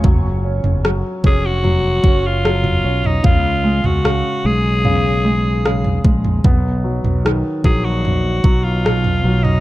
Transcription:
<<
  \new Staff \with { instrumentName = "Alto saxophone" } { \time 4/4 \key fis \major \tempo 4 = 75 r4. gis'16 fis'4 eis'4 dis'16 | eis'8. fis'8. gis'2 r8 | r4. gis'16 fis'4 eis'4 dis'16 | }
  \new Staff \with { instrumentName = "Grand piano" } { \clef bass \time 4/4 \key fis \major fis8 cis'8 fis8 cis'8 fis8 cis'8 fis8 cis'8 | cis8 gis8 cis8 gis8 cis8 gis8 cis8 gis8 | b8 fis8 dis8 fis4 fis8 b,8 fis8 | }
  \new Staff \with { instrumentName = "Fretless electric bass" } { \clef bass \time 4/4 \key fis \major fis,,8. fis,,8 r16 eis,,4 fis,,4 b,,8 | cis,8. cis,8 r16 b,,2 ais,,8 | b,,8. b,,8 r16 ais,,4 b,,4 b,,8 | }
  \new DrumStaff \with { instrumentName = "Drums" } \drummode { \time 4/4 <bd tomfh>8. tomfh16 ss8 bd8 tomfh8 bd8 ss16 tomfh8 tomfh16 | <bd tomfh>8. tomfh16 ss4 tomfh4 ss16 tomfh16 bd16 tomfh16 | <bd tomfh>8. tomfh16 ss8 bd8 tomfh8 bd8 ss16 tomfh8 tomfh16 | }
>>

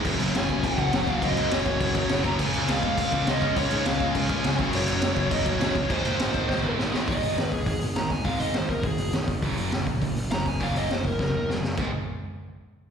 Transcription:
<<
  \new Staff \with { instrumentName = "Lead electric guitar" } { \time 4/4 \key ges \lydian \tempo 4 = 205 r4 aes''4 ges''4. f''8 | ees''4 des''2~ des''8 bes''8 | aes''4 f''4 f''4 ees''4 | des''4 f''4 aes''4. r8 |
des''8 des''4. ees''8 des''4~ des''16 des''16 | c''2. r4 | ees''4 ces''8 aes'8 aes'8 r8 bes''8 aes''8 | f''8 ees''8 c''8 bes'8 aes'4 r4 |
r2. bes''8 aes''8 | f''8 ees''8 c''8 bes'8 bes'4 r4 | r1 | }
  \new Staff \with { instrumentName = "Distorted electric guitar" } { \clef bass \time 4/4 \key ges \lydian <ges, des ges>2.~ <ges, des ges>8 <ges, des ges>8 | <ges, des ges>2.~ <ges, des ges>8 <ges, des ges>8 | <des aes des'>2.~ <des aes des'>8 <des aes des'>8 | <des aes des'>2.~ <des aes des'>8 <ges, des ges>8~ |
<ges, des ges>2. <ges, des ges>8 r8 | <aes, ees aes>2.~ <aes, ees aes>8 <aes, ees aes>8 | <aes, ees aes>4 <aes, ees>8 r8 <aes, ees>8 r8 <aes, ees>8 r8 | <aes, ees aes>4 <aes, ees>8 r8 <aes, ees>8 r8 <aes, ees>8 r8 |
<ges, des ges>4 <ges, des>8 r8 <ges, des>8 r8 <ges, des>8 r8 | <ges, des ges>4 <ges, des>8 r8 <ges, des>8 r8 <ges, des>8 r8 | <aes, ees aes>8 r2. r8 | }
  \new Staff \with { instrumentName = "Distorted electric guitar" } { \clef bass \time 4/4 \key ges \lydian <ges, des ges>2~ <ges, des ges>8 <ges, des ges>8 <ges, des ges>4 | <ges, des ges>2~ <ges, des ges>8 <ges, des ges>8 <ges, des ges>4 | <des aes des'>2~ <des aes des'>8 <des aes des'>8 <des aes des'>4 | <des aes des'>2~ <des aes des'>8 <des aes des'>8 <des aes des'>8 <ges, des ges>8~ |
<ges, des ges>2 <ges, des ges>8 <ges, des ges>4 r8 | <aes, ees aes>2~ <aes, ees aes>8 <aes, ees aes>8 <aes, ees aes>4 | <aes, ees aes>4 <aes, ees>8 r8 <aes, ees>8 r8 <aes, ees>8 r8 | <aes, ees aes>4 <aes, ees>8 r8 <aes, ees>8 r8 <aes, ees>8 r8 |
<ges, des ges>4 <ges, des>8 r8 <ges, des>8 r8 <ges, des>8 r8 | <ges, des ges>4 <ges, des>8 r8 <ges, des>8 r8 <ges, des>8 r8 | <aes, ees aes>8 r2. r8 | }
  \new Staff \with { instrumentName = "Distorted electric guitar" } { \clef bass \time 4/4 \key ges \lydian <ges, des ges>2.~ <ges, des ges>8 <ges, des ges>8 | <ges, des ges>2.~ <ges, des ges>8 <ges, des ges>8 | <des aes des'>2.~ <des aes des'>8 <des aes des'>8 | <des aes des'>2.~ <des aes des'>8 <ges, des ges>8~ |
<ges, des ges>2. <ges, des ges>8 r8 | <aes, ees aes>2.~ <aes, ees aes>8 <aes, ees aes>8 | r1 | r1 |
r1 | r1 | r1 | }
  \new Staff \with { instrumentName = "Picked electric bass" } { \clef bass \time 4/4 \key ges \lydian ges,,8 ges,,8 ges,,8 ges,,8 ges,,8 ges,,8 ges,,8 ges,,8 | ges,,8 des,8 ges,,8 ges,,8 ges,,8 ges,,8 ges,,8 ges,,8 | des,8 des,8 des,8 des,8 des,8 des,8 des,8 des,8 | des,8 aes,8 des,8 des,8 des,8 des,8 des,8 ges,,8 |
ges,,8 ges,,8 ges,,8 ges,,8 ges,,8 ges,,8 ges,,8 ges,,8 | aes,,8 ees,8 aes,,8 aes,,8 aes,,8 aes,,8 aes,,8 aes,,8 | aes,,8 aes,,8 aes,,8 des,8 aes,,8 aes,,8 aes,,8 aes,,8 | aes,,8 aes,,8 aes,,8 aes,,8 aes,,8 ges,,8 aes,,8 aes,,8 |
ges,,8 ges,,8 ges,,8 bes,,8 ges,,8 ges,,8 ges,,8 ges,,8 | ges,,8 ges,,8 ges,,8 ges,,8 ges,,8 ees,8 ges,,8 ges,,8 | aes,,8 r2. r8 | }
  \new DrumStaff \with { instrumentName = "Drums" } \drummode { \time 4/4 <cymc bd>8 cymc8 <cymc sn>8 <cymc bd>8 <cymc bd>8 <cymc bd>8 <cymc sn>8 <cymc bd>8 | <cymc bd>8 cymc8 <cymc sn>8 <cymc bd>8 <cymc bd>8 <cymc bd>8 <cymc sn>8 <cymc bd>8 | <cymc bd>8 cymc8 <cymc sn>8 <cymc bd>8 <cymc bd>8 <cymc bd>8 <cymc sn>8 <cymc bd>8 | <cymc bd>8 cymc8 <cymc sn>8 <cymc bd>8 <cymc bd>8 <cymc bd>8 <cymc sn>8 <cymc bd>8 |
cymc8 cymc8 <cymc sn>8 <cymc bd>8 <cymc bd>8 <cymc bd>8 <cymc sn>8 <cymc bd>8 | <cymc bd>8 cymc8 <cymc sn>8 <cymc bd>8 <bd sn>4 sn8 sn8 | <hho bd>8 hho8 <hho sn>8 <hho bd>8 <hho bd>8 hho8 <hho sn>8 <hho bd>8 | <hho bd>8 hho8 <hho sn>8 <hho bd>8 <hho bd>8 hho8 <hho sn>8 <hho bd>8 |
<hho bd>8 hho8 <hho sn>8 <hho bd>8 <hho bd>8 hho8 <hho sn>8 <hho bd>8 | <hho bd>8 hho8 <hho sn>8 <hho bd>8 <bd sn>4 sn8 sn8 | <cymc bd>4 r4 r4 r4 | }
>>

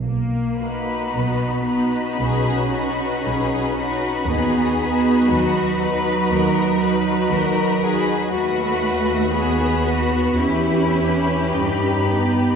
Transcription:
<<
  \new Staff \with { instrumentName = "Violin section" } { \time 4/4 \key b \major \tempo 4 = 58 r8 <b' b''>4 <b' b''>4 <b' b''>4 <b' b''>8 | <b' b''>8 <b' b''>4 <b' b''>4 <b' b''>4 <b' b''>8 | <b' b''>4 <b' b''>4 <b' b''>2 | }
  \new Staff \with { instrumentName = "Violin section" } { \time 4/4 \key b \major r2 gis'8 fis'8 gis'8 fis'8 | gis'4 fis'8 b'8 ais'8 b'8 ais'8 gis'8 | fis'4 gis'8 fis'8 e'4 g'8 g'8 | }
  \new Staff \with { instrumentName = "Viola section" } { \time 4/4 \key b \major << { r8 fis'4 fis'4 fis'4 fis'8 | fis'8 fis'4 fis'4 fis'4 fis'8 | fis'4 fis'4 g'2 | } \\ { r8 dis'4 dis'4 dis'4 dis'8 | dis'8 dis'4 dis'4 dis'4 dis'8 | fis'4 fis'4 e'4 dis'4 | } >> }
  \new Staff \with { instrumentName = "Cello section" } { \time 4/4 \key b \major ais4 b4 cis'2 | b4 fis2. | a4 b4 cis'4. b8 | }
  \new Staff \with { instrumentName = "Double bass section" } { \clef bass \time 4/4 \key b \major b,,4 b,,4 b,,4 b,,4 | dis,4 dis,4 dis,4 dis,4 | dis,2 e,4 g,4 | }
>>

